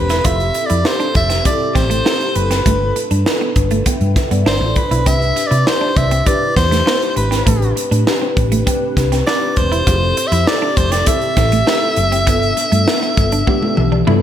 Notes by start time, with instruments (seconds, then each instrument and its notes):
Already playing: fingered electric bass E1, tine electric piano C4 D4 G4 A4 B4 C5, soprano saxophone B4
0.09 clean electric guitar E4, snare, closed hi-hat
0.25 fingered electric bass F1, tine electric piano C4 E4 G4 A4, clean electric guitar F4, soprano saxophone E5, kick, closed hi-hat
0.40 closed hi-hat
0.54 muted clean electric guitar stroke, closed hi-hat
0.66 clean electric guitar E4, soprano saxophone D5, closed hi-hat
0.71 fingered electric bass F2
0.85 tine electric piano C4 E4 G4 A4, soprano saxophone C5, snare
1.00 clean electric guitar D4, closed hi-hat
1.15 fingered electric bass F1, soprano saxophone E5, muted clean electric guitar stroke, kick, closed hi-hat
1.30 clean electric guitar C4, snare, closed hi-hat
1.44 tine electric piano C4 E4 G4 A4, soprano saxophone D5, muted clean electric guitar stroke, kick, closed hi-hat
1.70 soprano saxophone D5
1.75 fingered electric bass A1, clean electric guitar C4, soprano saxophone C5, kick, snare, closed hi-hat
1.90 clean electric guitar A3, closed hi-hat
2.05 tine electric piano C4 E4 G4 A4, clean electric guitar C4, snare
2.21 closed hi-hat
2.35 fingered electric bass F#1, soprano saxophone B4, muted clean electric guitar stroke, closed hi-hat
2.51 clean electric guitar C4, snare, closed hi-hat
2.65 fingered electric bass G1, clean electric guitar A3, tine electric piano D4 F4 A4 B4, kick, closed hi-hat
2.96 muted clean electric guitar stroke, closed hi-hat
3.11 fingered electric bass G2, clean electric guitar D4, closed hi-hat
3.25 tine electric piano D4 F4 A4 B4, snare
3.41 clean electric guitar B3
3.56 fingered electric bass G1, muted clean electric guitar stroke, kick, closed hi-hat
3.71 clean electric guitar A3, closed hi-hat
3.86 clean electric guitar B3, tine electric piano E5 G5, kick, closed hi-hat
4.01 fingered electric bass G2, closed hi-hat
4.16 tine electric piano E5, muted clean electric guitar stroke, kick, snare, closed hi-hat
4.31 fingered electric bass G2, clean electric guitar B3, tine electric piano B4 D5, closed hi-hat
4.46 fingered electric bass G1, tine electric piano D4 F4 A4 D5, clean electric guitar D4, soprano saxophone C5, snare
4.61 fingered electric bass A1, muted clean electric guitar stroke
4.76 soprano saxophone B4, kick, closed hi-hat
4.91 fingered electric bass B1, clean electric guitar E4, closed hi-hat
5.06 fingered electric bass C2, clean electric guitar C4, tine electric piano D4 E4 G4 B4, soprano saxophone E5, kick, closed hi-hat
5.22 closed hi-hat
5.36 muted clean electric guitar stroke, closed hi-hat
5.47 soprano saxophone D5
5.51 fingered electric bass C3, clean electric guitar E4, closed hi-hat
5.66 tine electric piano D4 E4 G4 D5, soprano saxophone C5, snare
5.81 clean electric guitar D4
5.96 fingered electric bass C2, soprano saxophone E5, muted clean electric guitar stroke, kick, closed hi-hat
6.11 clean electric guitar C4, closed hi-hat
6.26 tine electric piano D4 E4 G4 B4, soprano saxophone D5, muted clean electric guitar stroke, kick, closed hi-hat
6.56 fingered electric bass E2, clean electric guitar B3, soprano saxophone C5, kick, snare, closed hi-hat
6.71 clean electric guitar A3, snare, closed hi-hat
6.86 clean electric guitar B3, tine electric piano D4 E4 G4 C5, snare
7.02 closed hi-hat
7.16 fingered electric bass G#1, soprano saxophone B4, muted clean electric guitar stroke, closed hi-hat
7.31 clean electric guitar C4, snare, closed hi-hat
7.46 fingered electric bass A1, clean electric guitar A3, tine electric piano C4 D4 G4 B4, kick, closed hi-hat
7.62 closed hi-hat
7.76 muted clean electric guitar stroke, closed hi-hat
7.91 fingered electric bass A2, clean electric guitar D4, closed hi-hat
8.06 tine electric piano C4 D4 G4 B4, snare
8.22 clean electric guitar C4
8.37 fingered electric bass A1, muted clean electric guitar stroke, kick, closed hi-hat
8.52 clean electric guitar A3, closed hi-hat
8.66 tine electric piano C4 D4 G4 B4, clean electric guitar C4, kick, closed hi-hat
8.97 fingered electric bass C2, muted clean electric guitar stroke, kick, snare, closed hi-hat
9.12 clean electric guitar C4, snare, closed hi-hat
9.26 tine electric piano C4 D4 G4 B4, clean electric guitar D4, soprano saxophone D5, snare
9.42 muted clean electric guitar stroke
9.56 fingered electric bass E1, soprano saxophone C5, kick, closed hi-hat
9.72 clean electric guitar E4, closed hi-hat
9.86 fingered electric bass F1, tine electric piano C4 E4 G4 G#4, clean electric guitar F4, kick, closed hi-hat
9.94 tine electric piano A4
10.17 muted clean electric guitar stroke, closed hi-hat
10.27 soprano saxophone E5
10.32 fingered electric bass F2, clean electric guitar E4, closed hi-hat
10.46 tine electric piano C4 E4 G4 A4, soprano saxophone D5, snare
10.62 clean electric guitar D4
10.77 fingered electric bass F1, soprano saxophone C5, muted clean electric guitar stroke, kick, closed hi-hat
10.92 clean electric guitar C4, soprano saxophone D5, snare, closed hi-hat
11.06 tine electric piano C4 E4 G4 A4, soprano saxophone E5, muted clean electric guitar stroke, kick, closed hi-hat
11.21 closed hi-hat
11.37 fingered electric bass A1, clean electric guitar C4, kick, snare, closed hi-hat
11.52 clean electric guitar A3, closed hi-hat
11.66 tine electric piano C4 E4 G4 A4, clean electric guitar C4, snare
11.96 fingered electric bass F#1, muted clean electric guitar stroke, closed hi-hat
12.12 clean electric guitar C4, closed hi-hat
12.26 fingered electric bass G1, tine electric piano B3 D4 F4 A4, clean electric guitar B3, kick, closed hi-hat
12.42 closed hi-hat
12.57 muted clean electric guitar stroke, closed hi-hat
12.72 fingered electric bass G2, clean electric guitar A3, closed hi-hat
12.87 tine electric piano B3 D4 F4 A4, snare
13.03 clean electric guitar B3, closed hi-hat
13.17 fingered electric bass G1, muted clean electric guitar stroke, kick, closed hi-hat
13.32 clean electric guitar D4, closed hi-hat
13.47 tine electric piano B3 D4 F4 G4, clean electric guitar B3, kick, high tom
13.62 high tom
13.77 fingered electric bass B1, muted clean electric guitar stroke, mid tom
13.92 clean electric guitar D4, mid tom
14.07 fingered electric bass G2, tine electric piano B3 D4 F4 A4, clean electric guitar E4, mid tom